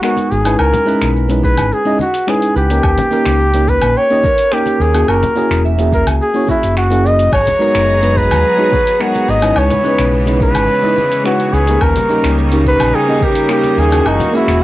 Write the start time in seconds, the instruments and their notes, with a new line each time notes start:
Already playing: harp G#4 D#5
0.02 fm electric piano G#3 B3 D#4 F#4 A#4, flugelhorn F#4, harp F#4, finger snap, shaker
0.17 open hi-hat, muted conga
0.31 fingered electric bass G#1, flugelhorn G#4, shaker
0.44 fm electric piano G#3 C#4 D#4 E4 B4, open hi-hat, low woodblock, shaker
0.58 fingered electric bass C#2, flugelhorn A#4, harp G#5, low woodblock, shaker
0.72 open hi-hat, high conga, low conga
0.85 fm electric piano G#3 C#4 D#4 E4 B4, harp B4, shaker
1.01 fingered electric bass B1, finger snap, open hi-hat, muted conga, shaker
1.16 shaker
1.28 fm electric piano G#3 C#4 D#4 E4 B4, open hi-hat
1.43 harp G#4, flugelhorn B4, kick, shaker
1.57 fingered electric bass G#1, open hi-hat, high conga, low woodblock, shaker
1.72 harp G#4, flugelhorn G#4, shaker
1.85 fm electric piano G#3 C#4 D#4 E4 D#5, muted conga
1.99 flugelhorn F#4, muted conga, high conga, shaker
2.14 open hi-hat, shaker
2.27 fm electric piano G#3 C#4 D#4 E4 B4, flugelhorn G#4, harp G#5, finger snap, shaker
2.42 open hi-hat
2.56 fingered electric bass C#2, flugelhorn G4, harp B4, shaker
2.70 fm electric piano A#3 C#4 D#4 G4 A#4, open hi-hat, shaker
2.83 fingered electric bass D#2, kick, low woodblock, shaker
2.98 open hi-hat, high conga, low conga
3.11 fm electric piano A#3 C#4 D#4 G4 A#4, harp G4, shaker
3.26 fingered electric bass C#2, finger snap, open hi-hat, muted conga, shaker
3.40 harp G4, shaker
3.54 fm electric piano A#3 C#4 D#4 G4 A#4, open hi-hat
3.68 flugelhorn B4, kick, shaker
3.82 fingered electric bass A#1, open hi-hat, high conga, low woodblock, shaker
3.97 flugelhorn C#5, harp G5, shaker
4.10 fm electric piano A#3 C#4 D#4 G4 D#5
4.23 harp A#4, kick, muted conga, high conga, shaker
4.38 open hi-hat, shaker
4.52 fm electric piano A#3 C#4 D#4 G4 A#4, flugelhorn G4, finger snap, shaker
4.66 open hi-hat, muted conga
4.80 fingered electric bass D#2, harp G4, flugelhorn G#4, shaker
4.94 fm electric piano A#3 C#4 E4 F#4 G#4, open hi-hat, low woodblock, shaker
5.08 fingered electric bass F#1, harp F#4, flugelhorn A#4, low woodblock, shaker
5.23 open hi-hat, high conga, low conga
5.35 fm electric piano A#3 C#4 E4 F#4 G#4, shaker
5.50 fingered electric bass E1, finger snap, open hi-hat, muted conga, shaker
5.65 harp E5, shaker
5.78 fm electric piano A#3 C#4 E4 F#4 G#4, open hi-hat
5.92 harp G#4, flugelhorn A#4, kick, shaker
6.07 fingered electric bass C#2, open hi-hat, high conga, low woodblock, shaker
6.21 flugelhorn G#4, shaker
6.34 fm electric piano A#3 C#4 E4 F#4 C#5, muted conga
6.47 fm electric piano A#3 C#4 E4 F#4 G#4, flugelhorn E4, harp F#4, kick, muted conga, high conga, shaker
6.63 fingered electric bass F#1, open hi-hat, shaker
6.76 harp F#4, flugelhorn F#4, finger snap, shaker
6.90 fm electric piano A#3 C#4 E4 F#4 G#4, open hi-hat
7.06 flugelhorn D#5, shaker
7.19 open hi-hat, shaker
7.31 fingered electric bass G#1, string section F#3 B3 G#4 A#5, harp F#4, synth texture C#5 C#6, flugelhorn C#5, kick, low woodblock, shaker
7.47 open hi-hat, high conga, low conga
7.59 fm electric piano G#3 B3 D#4 F#4 A#4, shaker
7.75 fingered electric bass F#1, finger snap, open hi-hat, muted conga, shaker
7.88 harp D#5, shaker
8.01 fm electric piano G#3 B3 D#4 F#4 B4, open hi-hat
8.16 harp G#4, flugelhorn B4, kick, shaker
8.31 fingered electric bass D#2, open hi-hat, high conga, low woodblock, shaker
8.45 shaker
8.57 fm electric piano G#3 B3 D#4 F#4 C#5
8.72 harp F#4, kick, muted conga, high conga, shaker
8.87 open hi-hat, shaker
9.00 fm electric piano G#3 B3 D#4 F#4 A#4, harp F#4, flugelhorn F#4, finger snap, shaker
9.15 open hi-hat, muted conga
9.28 fingered electric bass G#1, flugelhorn D#5, shaker
9.41 fm electric piano G#3 C#4 D#4 E4 B4, open hi-hat, low woodblock, shaker
9.56 fingered electric bass C#2, string section C#3 E3 G#3, flugelhorn C#5, harp G#5, low woodblock, shaker
9.71 open hi-hat, high conga, low conga
9.83 fm electric piano G#3 C#4 D#4 E4 B4, harp B4, shaker
9.99 fingered electric bass B1, finger snap, open hi-hat, muted conga, shaker
10.13 shaker
10.26 fm electric piano G#3 C#4 D#4 E4 B4, open hi-hat
10.40 harp G#4, flugelhorn B4, kick, shaker
10.54 fingered electric bass G#1, open hi-hat, high conga, low woodblock, shaker
10.68 harp G#4, shaker
10.82 fm electric piano G#3 C#4 D#4 E4 D#5, muted conga
10.97 muted conga, high conga, shaker
11.12 open hi-hat, shaker
11.24 fm electric piano G#3 C#4 D#4 E4 B4, flugelhorn F#4, harp G#5, finger snap, shaker
11.40 open hi-hat
11.53 fingered electric bass C#2, flugelhorn G#4, harp B4, shaker
11.67 fm electric piano A#3 C#4 D#4 G4 A#4, open hi-hat, shaker
11.81 fingered electric bass D#2, string section C#3 G3 A#3 D#4, flugelhorn A#4, kick, low woodblock, shaker
11.96 open hi-hat, high conga, low conga
12.08 fm electric piano A#3 C#4 D#4 G4 A#4, harp G4, shaker
12.24 fingered electric bass C#2, finger snap, open hi-hat, muted conga, shaker
12.37 harp G4, shaker
12.51 fm electric piano A#3 C#4 D#4 G4 A#4, open hi-hat
12.65 flugelhorn B4, kick, shaker
12.80 fingered electric bass A#1, open hi-hat, high conga, low woodblock, shaker
12.94 flugelhorn G#4, harp G5, shaker
13.07 fm electric piano A#3 C#4 D#4 G4 D#5
13.21 flugelhorn G4, harp A#4, kick, muted conga, high conga, shaker
13.36 open hi-hat, shaker
13.49 fm electric piano A#3 C#4 D#4 G4 A#4, flugelhorn G4, finger snap, shaker
13.64 open hi-hat, muted conga
13.77 fingered electric bass D#2, harp G4, flugelhorn G#4, shaker
13.91 fm electric piano A#3 C#4 E4 F#4 G#4, open hi-hat, low woodblock, shaker
14.06 fingered electric bass F#1, string section E3 G#3 F#4, flugelhorn D#4, harp F#4, low woodblock, shaker
14.20 open hi-hat, high conga, low conga
14.33 fm electric piano A#3 C#4 E4 F#4 G#4, flugelhorn E4, shaker
14.48 fingered electric bass E1, finger snap, open hi-hat, muted conga, shaker